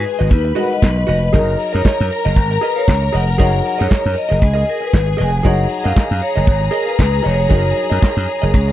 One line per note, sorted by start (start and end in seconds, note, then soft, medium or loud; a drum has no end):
0.00 0.54 G#3 medium
0.00 0.55 D#4 medium
0.00 0.55 F#4 medium
0.00 0.28 G#4 medium
0.00 0.54 B4 loud
0.00 0.56 B4 medium
0.00 0.28 G#5 loud
0.05 muted clean electric guitar stroke soft
0.05 open hi-hat medium
0.19 0.29 G#1 medium
0.19 0.29 F#4 medium
0.19 0.29 B4 medium
0.19 0.29 D#5 medium
0.30 0.51 D#2 medium
0.30 1.32 B4 medium
0.30 1.32 B5 medium
0.30 kick loud
0.30 closed hi-hat medium
0.45 muted clean electric guitar stroke soft
0.55 1.33 G#3 soft
0.55 1.31 D#4 soft
0.55 0.71 F#4 medium
0.55 1.34 F#4 soft
0.55 0.64 A#4 soft
0.55 0.69 B4 medium
0.55 0.68 D#5 medium
0.55 0.73 F#5 medium
0.55 open hi-hat medium
0.64 1.37 B4 medium
0.70 1.08 D#5 medium
0.70 muted clean electric guitar stroke soft
0.82 1.03 B1 medium
0.82 kick loud
0.82 snare loud
0.82 clap medium
0.82 closed hi-hat medium
0.96 muted clean electric guitar stroke soft
1.07 1.29 F1 medium
1.07 1.22 F#4 medium
1.07 1.21 B4 medium
1.07 1.19 D#5 medium
1.07 1.76 D#5 medium
1.07 open hi-hat medium
1.21 muted clean electric guitar stroke soft
1.32 1.54 F#1 medium
1.32 3.34 F#3 medium
1.32 3.35 D#4 medium
1.32 1.57 G#4 medium
1.32 3.35 G#4 medium
1.32 1.58 A#4 loud
1.32 4.38 A#4 medium
1.32 3.36 A#4 medium
1.32 1.58 D#5 medium
1.32 4.38 A#5 medium
1.32 kick loud
1.32 closed hi-hat soft
1.59 muted clean electric guitar stroke soft
1.59 open hi-hat medium
1.73 1.83 F#2 medium
1.73 1.83 G#4 soft
1.73 1.83 A#4 medium
1.73 2.13 C#5 medium
1.73 1.82 D#5 medium
1.84 1.99 G#4 medium
1.84 1.99 A#4 medium
1.84 1.98 D#5 medium
1.84 kick loud
1.84 snare medium
1.84 clap medium
1.84 closed hi-hat medium
1.99 2.09 F#2 loud
1.99 muted clean electric guitar stroke soft
2.09 2.65 A#4 medium
2.09 muted clean electric guitar stroke soft
2.09 open hi-hat medium
2.25 2.37 F#1 medium
2.25 2.35 G#4 soft
2.25 2.34 A#4 medium
2.25 2.34 D#5 medium
2.36 2.57 G#1 medium
2.36 muted clean electric guitar stroke soft
2.36 kick loud
2.36 closed hi-hat medium
2.51 muted clean electric guitar stroke soft
2.61 2.76 G#4 medium
2.61 2.76 A#4 medium
2.61 2.78 B4 medium
2.61 2.76 D#5 medium
2.61 open hi-hat medium
2.76 2.86 G#4 medium
2.76 2.86 A#4 medium
2.76 3.12 C#5 medium
2.76 2.85 F5 medium
2.88 3.08 C#2 medium
2.88 kick loud
2.88 snare loud
2.88 clap medium
2.88 closed hi-hat medium
3.02 muted clean electric guitar stroke soft
3.12 3.34 F1 medium
3.12 3.28 G#4 medium
3.12 3.27 A#4 medium
3.12 3.26 D#5 medium
3.12 3.40 F#5 medium
3.12 open hi-hat medium
3.27 muted clean electric guitar stroke soft
3.37 3.60 F#1 loud
3.37 5.40 F#3 medium
3.37 5.41 D#4 medium
3.37 3.63 G#4 medium
3.37 5.41 G#4 medium
3.37 3.63 A#4 medium
3.37 5.41 C#5 medium
3.37 3.63 D#5 medium
3.37 3.81 F#5 loud
3.37 kick medium
3.37 closed hi-hat medium
3.65 muted clean electric guitar stroke soft
3.65 open hi-hat medium
3.78 3.89 F#2 medium
3.78 3.87 G#4 soft
3.78 3.88 A#4 medium
3.78 4.18 C#5 medium
3.78 3.88 D#5 medium
3.89 4.04 G#4 medium
3.89 4.04 A#4 medium
3.89 4.03 D#5 medium
3.89 kick loud
3.89 snare loud
3.89 clap medium
3.89 closed hi-hat medium
4.04 4.14 F#2 medium
4.04 muted clean electric guitar stroke soft
4.15 4.70 D#5 medium
4.15 muted clean electric guitar stroke soft
4.15 open hi-hat medium
4.29 4.40 F#1 medium
4.29 4.39 G#4 medium
4.29 4.39 A#4 medium
4.29 4.39 D#5 medium
4.40 4.62 C#2 loud
4.40 5.43 G#4 medium
4.40 5.44 G#5 medium
4.40 muted clean electric guitar stroke soft
4.40 kick loud
4.40 closed hi-hat medium
4.53 4.65 G#4 medium
4.53 4.65 A#4 medium
4.53 4.66 D#5 medium
4.66 4.83 A#4 medium
4.66 muted clean electric guitar stroke soft
4.66 open hi-hat medium
4.80 5.18 B4 medium
4.80 muted clean electric guitar stroke soft
4.93 5.14 G#1 medium
4.93 kick loud
4.93 snare loud
4.93 clap medium
4.93 closed hi-hat medium
5.06 muted clean electric guitar stroke soft
5.17 5.40 F1 medium
5.17 5.33 G#4 medium
5.17 5.32 A#4 medium
5.17 5.31 D#5 medium
5.17 open hi-hat medium
5.22 5.47 G#5 medium
5.32 muted clean electric guitar stroke soft
5.43 5.65 F#1 loud
5.43 7.46 F#3 medium
5.43 7.47 D#4 medium
5.43 5.68 G#4 medium
5.43 8.72 G#4 medium
5.43 7.47 G#4 medium
5.43 5.68 A#4 medium
5.43 7.47 C#5 medium
5.43 5.69 D#5 medium
5.43 5.87 F#5 loud
5.43 8.72 A#5 medium
5.43 kick medium
5.43 closed hi-hat medium
5.69 muted clean electric guitar stroke soft
5.69 open hi-hat medium
5.84 5.94 F#2 medium
5.84 5.94 G#4 soft
5.84 5.94 A#4 medium
5.84 5.93 D#5 medium
5.84 6.24 F5 medium
5.95 6.10 G#4 medium
5.95 6.10 A#4 medium
5.95 6.09 D#5 loud
5.95 kick loud
5.95 snare loud
5.95 clap medium
5.95 closed hi-hat medium
6.10 6.20 F#2 loud
6.10 muted clean electric guitar stroke soft
6.21 6.75 C#5 medium
6.21 muted clean electric guitar stroke soft
6.21 open hi-hat medium
6.36 6.46 F#1 medium
6.36 6.45 G#4 medium
6.36 6.45 A#4 medium
6.36 6.45 D#5 medium
6.46 6.68 G#1 medium
6.46 kick loud
6.46 closed hi-hat medium
6.61 muted clean electric guitar stroke soft
6.71 6.86 G#4 medium
6.71 6.85 A#4 medium
6.71 6.87 A#4 medium
6.71 6.85 D#5 medium
6.71 open hi-hat medium
6.86 6.97 G#4 medium
6.86 6.96 A#4 medium
6.86 7.27 B4 medium
6.86 6.96 F5 medium
6.99 7.20 C#2 medium
6.99 kick loud
6.99 snare medium
6.99 clap medium
6.99 closed hi-hat medium
7.12 muted clean electric guitar stroke soft
7.23 7.46 F1 medium
7.23 7.38 G#4 medium
7.23 7.38 A#4 medium
7.23 8.72 C#5 medium
7.23 7.36 D#5 medium
7.23 open hi-hat medium
7.37 muted clean electric guitar stroke soft
7.49 7.71 F#1 medium
7.49 8.72 F#3 medium
7.49 8.72 D#4 medium
7.49 7.74 G#4 medium
7.49 8.72 G#4 medium
7.49 7.74 A#4 medium
7.49 8.72 A#4 medium
7.49 7.75 D#5 loud
7.49 kick medium
7.49 closed hi-hat medium
7.75 muted clean electric guitar stroke soft
7.75 open hi-hat medium
7.90 8.00 F#2 medium
7.90 8.00 G#4 soft
7.90 8.00 A#4 soft
7.90 7.99 D#5 medium
8.01 8.16 G#4 medium
8.01 8.16 A#4 medium
8.01 8.15 D#5 medium
8.01 kick loud
8.01 snare loud
8.01 clap medium
8.01 closed hi-hat medium
8.16 8.26 F#2 loud
8.16 muted clean electric guitar stroke soft
8.28 muted clean electric guitar stroke soft
8.28 open hi-hat medium
8.42 8.52 F#1 medium
8.42 8.52 G#4 medium
8.42 8.52 A#4 medium
8.42 8.51 D#5 medium
8.54 8.72 C#2 medium
8.54 kick loud
8.54 closed hi-hat medium
8.68 muted clean electric guitar stroke soft